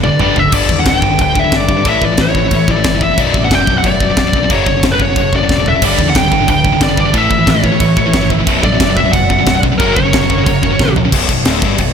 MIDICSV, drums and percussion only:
0, 0, Header, 1, 2, 480
1, 0, Start_track
1, 0, Key_signature, 2, "minor"
1, 0, Tempo, 331126
1, 770, Time_signature, 4, 2, 24, 8
1, 17297, End_track
2, 0, Start_track
2, 0, Title_t, "Drums"
2, 53, Note_on_c, 9, 48, 68
2, 198, Note_off_c, 9, 48, 0
2, 283, Note_on_c, 9, 45, 102
2, 427, Note_off_c, 9, 45, 0
2, 523, Note_on_c, 9, 43, 93
2, 668, Note_off_c, 9, 43, 0
2, 756, Note_on_c, 9, 49, 127
2, 756, Note_on_c, 9, 57, 68
2, 762, Note_on_c, 9, 36, 124
2, 900, Note_off_c, 9, 49, 0
2, 900, Note_off_c, 9, 57, 0
2, 907, Note_off_c, 9, 36, 0
2, 1002, Note_on_c, 9, 36, 97
2, 1147, Note_off_c, 9, 36, 0
2, 1241, Note_on_c, 9, 57, 67
2, 1242, Note_on_c, 9, 36, 121
2, 1249, Note_on_c, 9, 38, 127
2, 1386, Note_off_c, 9, 57, 0
2, 1387, Note_off_c, 9, 36, 0
2, 1394, Note_off_c, 9, 38, 0
2, 1482, Note_on_c, 9, 36, 91
2, 1627, Note_off_c, 9, 36, 0
2, 1723, Note_on_c, 9, 57, 60
2, 1724, Note_on_c, 9, 36, 109
2, 1868, Note_off_c, 9, 57, 0
2, 1869, Note_off_c, 9, 36, 0
2, 1963, Note_on_c, 9, 36, 92
2, 2108, Note_off_c, 9, 36, 0
2, 2204, Note_on_c, 9, 36, 112
2, 2204, Note_on_c, 9, 57, 63
2, 2213, Note_on_c, 9, 38, 112
2, 2349, Note_off_c, 9, 36, 0
2, 2349, Note_off_c, 9, 57, 0
2, 2357, Note_off_c, 9, 38, 0
2, 2444, Note_on_c, 9, 36, 95
2, 2589, Note_off_c, 9, 36, 0
2, 2680, Note_on_c, 9, 57, 69
2, 2684, Note_on_c, 9, 36, 117
2, 2825, Note_off_c, 9, 57, 0
2, 2829, Note_off_c, 9, 36, 0
2, 2922, Note_on_c, 9, 36, 90
2, 3067, Note_off_c, 9, 36, 0
2, 3150, Note_on_c, 9, 57, 70
2, 3159, Note_on_c, 9, 38, 124
2, 3161, Note_on_c, 9, 36, 121
2, 3295, Note_off_c, 9, 57, 0
2, 3304, Note_off_c, 9, 38, 0
2, 3306, Note_off_c, 9, 36, 0
2, 3403, Note_on_c, 9, 36, 90
2, 3548, Note_off_c, 9, 36, 0
2, 3637, Note_on_c, 9, 57, 68
2, 3643, Note_on_c, 9, 36, 110
2, 3782, Note_off_c, 9, 57, 0
2, 3788, Note_off_c, 9, 36, 0
2, 3884, Note_on_c, 9, 36, 94
2, 4029, Note_off_c, 9, 36, 0
2, 4117, Note_on_c, 9, 57, 68
2, 4124, Note_on_c, 9, 36, 116
2, 4125, Note_on_c, 9, 38, 113
2, 4262, Note_off_c, 9, 57, 0
2, 4269, Note_off_c, 9, 36, 0
2, 4270, Note_off_c, 9, 38, 0
2, 4362, Note_on_c, 9, 36, 83
2, 4507, Note_off_c, 9, 36, 0
2, 4604, Note_on_c, 9, 57, 72
2, 4607, Note_on_c, 9, 36, 127
2, 4749, Note_off_c, 9, 57, 0
2, 4752, Note_off_c, 9, 36, 0
2, 4846, Note_on_c, 9, 36, 89
2, 4991, Note_off_c, 9, 36, 0
2, 5086, Note_on_c, 9, 57, 69
2, 5087, Note_on_c, 9, 36, 127
2, 5094, Note_on_c, 9, 38, 119
2, 5231, Note_off_c, 9, 57, 0
2, 5232, Note_off_c, 9, 36, 0
2, 5239, Note_off_c, 9, 38, 0
2, 5325, Note_on_c, 9, 36, 83
2, 5470, Note_off_c, 9, 36, 0
2, 5561, Note_on_c, 9, 57, 66
2, 5566, Note_on_c, 9, 36, 105
2, 5706, Note_off_c, 9, 57, 0
2, 5711, Note_off_c, 9, 36, 0
2, 5804, Note_on_c, 9, 36, 89
2, 5949, Note_off_c, 9, 36, 0
2, 6040, Note_on_c, 9, 57, 60
2, 6044, Note_on_c, 9, 36, 116
2, 6049, Note_on_c, 9, 38, 114
2, 6185, Note_off_c, 9, 57, 0
2, 6189, Note_off_c, 9, 36, 0
2, 6194, Note_off_c, 9, 38, 0
2, 6283, Note_on_c, 9, 36, 86
2, 6428, Note_off_c, 9, 36, 0
2, 6520, Note_on_c, 9, 57, 70
2, 6523, Note_on_c, 9, 36, 120
2, 6665, Note_off_c, 9, 57, 0
2, 6668, Note_off_c, 9, 36, 0
2, 6762, Note_on_c, 9, 36, 92
2, 6906, Note_off_c, 9, 36, 0
2, 7001, Note_on_c, 9, 57, 69
2, 7002, Note_on_c, 9, 36, 118
2, 7009, Note_on_c, 9, 38, 127
2, 7146, Note_off_c, 9, 57, 0
2, 7147, Note_off_c, 9, 36, 0
2, 7154, Note_off_c, 9, 38, 0
2, 7243, Note_on_c, 9, 36, 88
2, 7388, Note_off_c, 9, 36, 0
2, 7481, Note_on_c, 9, 36, 110
2, 7482, Note_on_c, 9, 57, 64
2, 7626, Note_off_c, 9, 36, 0
2, 7627, Note_off_c, 9, 57, 0
2, 7722, Note_on_c, 9, 36, 89
2, 7867, Note_off_c, 9, 36, 0
2, 7963, Note_on_c, 9, 36, 106
2, 7979, Note_on_c, 9, 38, 69
2, 8108, Note_off_c, 9, 36, 0
2, 8124, Note_off_c, 9, 38, 0
2, 8205, Note_on_c, 9, 43, 92
2, 8350, Note_off_c, 9, 43, 0
2, 8438, Note_on_c, 9, 36, 127
2, 8439, Note_on_c, 9, 57, 112
2, 8583, Note_off_c, 9, 36, 0
2, 8584, Note_off_c, 9, 57, 0
2, 8677, Note_on_c, 9, 36, 90
2, 8822, Note_off_c, 9, 36, 0
2, 8917, Note_on_c, 9, 36, 121
2, 8921, Note_on_c, 9, 57, 69
2, 8930, Note_on_c, 9, 38, 127
2, 9062, Note_off_c, 9, 36, 0
2, 9066, Note_off_c, 9, 57, 0
2, 9075, Note_off_c, 9, 38, 0
2, 9157, Note_on_c, 9, 36, 85
2, 9302, Note_off_c, 9, 36, 0
2, 9395, Note_on_c, 9, 36, 111
2, 9396, Note_on_c, 9, 57, 69
2, 9540, Note_off_c, 9, 36, 0
2, 9541, Note_off_c, 9, 57, 0
2, 9633, Note_on_c, 9, 36, 92
2, 9778, Note_off_c, 9, 36, 0
2, 9869, Note_on_c, 9, 57, 63
2, 9870, Note_on_c, 9, 36, 117
2, 9878, Note_on_c, 9, 38, 111
2, 10014, Note_off_c, 9, 57, 0
2, 10015, Note_off_c, 9, 36, 0
2, 10023, Note_off_c, 9, 38, 0
2, 10110, Note_on_c, 9, 36, 92
2, 10255, Note_off_c, 9, 36, 0
2, 10348, Note_on_c, 9, 57, 67
2, 10349, Note_on_c, 9, 36, 127
2, 10493, Note_off_c, 9, 57, 0
2, 10494, Note_off_c, 9, 36, 0
2, 10591, Note_on_c, 9, 36, 102
2, 10736, Note_off_c, 9, 36, 0
2, 10831, Note_on_c, 9, 36, 118
2, 10832, Note_on_c, 9, 57, 64
2, 10841, Note_on_c, 9, 38, 119
2, 10975, Note_off_c, 9, 36, 0
2, 10977, Note_off_c, 9, 57, 0
2, 10986, Note_off_c, 9, 38, 0
2, 11069, Note_on_c, 9, 36, 86
2, 11214, Note_off_c, 9, 36, 0
2, 11310, Note_on_c, 9, 36, 117
2, 11311, Note_on_c, 9, 57, 67
2, 11455, Note_off_c, 9, 36, 0
2, 11456, Note_off_c, 9, 57, 0
2, 11551, Note_on_c, 9, 36, 93
2, 11696, Note_off_c, 9, 36, 0
2, 11791, Note_on_c, 9, 57, 66
2, 11793, Note_on_c, 9, 36, 118
2, 11800, Note_on_c, 9, 38, 113
2, 11936, Note_off_c, 9, 57, 0
2, 11938, Note_off_c, 9, 36, 0
2, 11945, Note_off_c, 9, 38, 0
2, 12035, Note_on_c, 9, 36, 90
2, 12180, Note_off_c, 9, 36, 0
2, 12278, Note_on_c, 9, 36, 125
2, 12281, Note_on_c, 9, 57, 74
2, 12423, Note_off_c, 9, 36, 0
2, 12426, Note_off_c, 9, 57, 0
2, 12516, Note_on_c, 9, 36, 93
2, 12661, Note_off_c, 9, 36, 0
2, 12757, Note_on_c, 9, 36, 123
2, 12757, Note_on_c, 9, 57, 76
2, 12765, Note_on_c, 9, 38, 111
2, 12902, Note_off_c, 9, 36, 0
2, 12902, Note_off_c, 9, 57, 0
2, 12910, Note_off_c, 9, 38, 0
2, 12998, Note_on_c, 9, 36, 88
2, 13143, Note_off_c, 9, 36, 0
2, 13241, Note_on_c, 9, 36, 115
2, 13242, Note_on_c, 9, 57, 71
2, 13386, Note_off_c, 9, 36, 0
2, 13387, Note_off_c, 9, 57, 0
2, 13482, Note_on_c, 9, 36, 86
2, 13627, Note_off_c, 9, 36, 0
2, 13721, Note_on_c, 9, 57, 66
2, 13722, Note_on_c, 9, 36, 115
2, 13730, Note_on_c, 9, 38, 114
2, 13866, Note_off_c, 9, 57, 0
2, 13867, Note_off_c, 9, 36, 0
2, 13875, Note_off_c, 9, 38, 0
2, 13963, Note_on_c, 9, 36, 92
2, 14108, Note_off_c, 9, 36, 0
2, 14199, Note_on_c, 9, 57, 69
2, 14204, Note_on_c, 9, 36, 119
2, 14344, Note_off_c, 9, 57, 0
2, 14349, Note_off_c, 9, 36, 0
2, 14445, Note_on_c, 9, 36, 100
2, 14590, Note_off_c, 9, 36, 0
2, 14688, Note_on_c, 9, 36, 121
2, 14692, Note_on_c, 9, 57, 60
2, 14701, Note_on_c, 9, 38, 120
2, 14833, Note_off_c, 9, 36, 0
2, 14837, Note_off_c, 9, 57, 0
2, 14846, Note_off_c, 9, 38, 0
2, 14929, Note_on_c, 9, 36, 79
2, 15074, Note_off_c, 9, 36, 0
2, 15170, Note_on_c, 9, 36, 113
2, 15177, Note_on_c, 9, 57, 63
2, 15315, Note_off_c, 9, 36, 0
2, 15322, Note_off_c, 9, 57, 0
2, 15410, Note_on_c, 9, 36, 90
2, 15555, Note_off_c, 9, 36, 0
2, 15647, Note_on_c, 9, 36, 108
2, 15657, Note_on_c, 9, 38, 67
2, 15792, Note_off_c, 9, 36, 0
2, 15802, Note_off_c, 9, 38, 0
2, 15890, Note_on_c, 9, 43, 97
2, 16035, Note_off_c, 9, 43, 0
2, 16125, Note_on_c, 9, 36, 123
2, 16126, Note_on_c, 9, 49, 122
2, 16126, Note_on_c, 9, 57, 103
2, 16270, Note_off_c, 9, 36, 0
2, 16271, Note_off_c, 9, 49, 0
2, 16271, Note_off_c, 9, 57, 0
2, 16363, Note_on_c, 9, 57, 75
2, 16364, Note_on_c, 9, 36, 97
2, 16508, Note_off_c, 9, 57, 0
2, 16509, Note_off_c, 9, 36, 0
2, 16600, Note_on_c, 9, 57, 93
2, 16609, Note_on_c, 9, 38, 118
2, 16745, Note_off_c, 9, 57, 0
2, 16754, Note_off_c, 9, 38, 0
2, 16842, Note_on_c, 9, 57, 65
2, 16844, Note_on_c, 9, 36, 105
2, 16987, Note_off_c, 9, 57, 0
2, 16989, Note_off_c, 9, 36, 0
2, 17079, Note_on_c, 9, 57, 86
2, 17086, Note_on_c, 9, 36, 96
2, 17224, Note_off_c, 9, 57, 0
2, 17231, Note_off_c, 9, 36, 0
2, 17297, End_track
0, 0, End_of_file